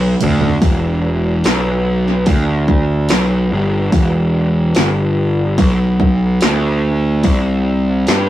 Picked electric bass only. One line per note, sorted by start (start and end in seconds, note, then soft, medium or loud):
0.00 0.13 B1 medium
0.23 0.55 D2 medium
0.62 1.42 E1 medium
1.45 2.25 B1 medium
2.27 3.07 D2 medium
3.11 3.50 B1 medium
3.52 3.91 G1 medium
3.92 4.72 E1 medium
4.77 5.56 G1 medium
5.58 6.38 B1 medium
6.43 7.22 D2 medium
7.24 8.04 C2 loud
8.08 8.29 G2 medium